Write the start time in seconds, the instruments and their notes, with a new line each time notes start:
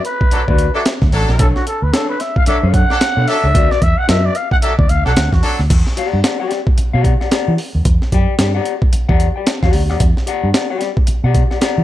0.05 trumpet B4, closed hi-hat
0.21 kick
0.31 horn section F#3 D4 A4, muted fingered electric bass stroke, closed hi-hat
0.48 fingered electric bass D2, clean electric guitar F#4 B4 D5, trumpet B4, kick
0.58 closed hi-hat
0.75 horn section F#3 D4 A4, clean electric guitar F#4 B4 E5
0.86 snare, closed hi-hat
1.02 fingered electric bass D2, kick, snare
1.12 fingered electric bass A1, horn section F#3 D4 A4, open hi-hat
1.28 fingered electric bass A#1, snare
1.39 fingered electric bass B1, clean electric guitar D4 A4 C#5, trumpet A4, kick, closed hi-hat
1.56 trumpet F#4, snare
1.67 trumpet A4, closed hi-hat
1.82 fingered electric bass D2, trumpet B4
1.93 clean electric guitar D4 A4 C#5, trumpet A4, snare, closed hi-hat
2.10 trumpet B4
2.20 trumpet E5, snare, closed hi-hat
2.36 trumpet F5, kick
2.46 horn section F#3 D4 A4, clean electric guitar D4 A4 C#5, trumpet E5, muted fingered electric bass stroke, closed hi-hat
2.63 fingered electric bass F#2, clean electric guitar D4 A4 C#5
2.68 trumpet F5
2.74 trumpet F#5, kick, closed hi-hat
2.90 horn section F#3 D4 A4, snare
3.01 snare, closed hi-hat
3.16 fingered electric bass B2, clean electric guitar D4 A4 C#5
3.28 horn section F#3 D4 A4, trumpet E5, open hi-hat
3.44 fingered electric bass C#2, clean electric guitar D4 A4 C#5
3.54 fingered electric bass D2, clean electric guitar F#4 B4 D5, kick, closed hi-hat
3.71 trumpet D5, snare
3.82 fingered electric bass E2, trumpet E5, kick, closed hi-hat
3.98 trumpet F#5
4.08 fingered electric bass F#2, clean electric guitar F#4 B4 E5, trumpet E5, snare, closed hi-hat
4.26 trumpet D5
4.35 trumpet F5, closed hi-hat
4.51 trumpet F#5, kick
4.62 horn section F#3 D4 A4, trumpet E5, closed hi-hat
4.78 fingered electric bass D2, trumpet D5, kick
4.89 fingered electric bass D2, trumpet F5, closed hi-hat
5.05 fingered electric bass B1, horn section F#3 D4 A4, trumpet F#5, snare
5.17 fingered electric bass D2, snare, closed hi-hat
5.32 fingered electric bass E2, trumpet F#4, kick, snare
5.43 horn section F#3 D4 A4, open hi-hat
5.59 fingered electric bass D2, snare
5.70 fingered electric bass E2, kick, closed hi-hat, crash
5.87 snare
5.97 clean electric guitar G4 D5 F#5, closed hi-hat
6.13 fingered electric bass G2
6.24 clean electric guitar G4 D5 F#5, snare, closed hi-hat
6.40 clean electric guitar G4 D5 G5
6.51 snare, closed hi-hat
6.67 kick
6.78 muted fingered electric bass stroke, closed hi-hat
6.93 fingered electric bass B2, clean electric guitar G4 D5 F#5
7.04 kick, closed hi-hat
7.21 clean electric guitar G4 D5 F#5, snare
7.31 clean electric guitar G4 D5 F#5, snare, closed hi-hat
7.48 fingered electric bass E3
7.58 open hi-hat
7.75 fingered electric bass D#2
7.85 fingered electric bass E2, kick, closed hi-hat
8.02 snare
8.12 fingered electric bass F#2, clean electric guitar G4 D5 G5, kick, closed hi-hat
8.39 fingered electric bass G2, clean electric guitar G4 D5 G5, snare, closed hi-hat
8.55 clean electric guitar G4 D5 F#5
8.65 closed hi-hat
8.82 kick
8.93 muted fingered electric bass stroke, closed hi-hat
9.09 fingered electric bass E2, clean electric guitar G4 D5 F#5, kick
9.20 closed hi-hat
9.36 clean electric guitar G4 D5 G5
9.47 snare, closed hi-hat
9.63 fingered electric bass E2, clean electric guitar G4 D5 F#5, kick, snare
9.73 fingered electric bass D2, open hi-hat
9.90 fingered electric bass D#2, clean electric guitar G4 D5 F#5, snare
10.00 fingered electric bass E2, kick, closed hi-hat
10.17 snare
10.27 clean electric guitar G4 D5 F#5, closed hi-hat
10.44 fingered electric bass G2
10.54 clean electric guitar G4 D5 F#5, snare, closed hi-hat
10.70 clean electric guitar G4 D5 G5
10.81 snare, closed hi-hat
10.97 kick
11.07 muted fingered electric bass stroke, closed hi-hat
11.24 fingered electric bass B2, clean electric guitar G4 D5 F#5
11.35 kick, closed hi-hat
11.51 clean electric guitar G4 D5 F#5, snare
11.61 clean electric guitar G4 D5 F#5, snare, closed hi-hat
11.78 fingered electric bass E3